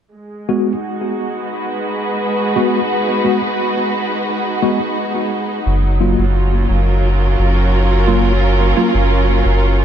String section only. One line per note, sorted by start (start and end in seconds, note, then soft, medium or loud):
0.15 5.66 G#3 medium
0.66 7.88 D#4 medium
0.72 5.67 F#4 medium
1.36 5.67 B4 medium
5.66 9.85 F#3 medium
6.09 9.85 F4 medium
6.24 9.85 C#4 medium
6.59 9.85 A#4 medium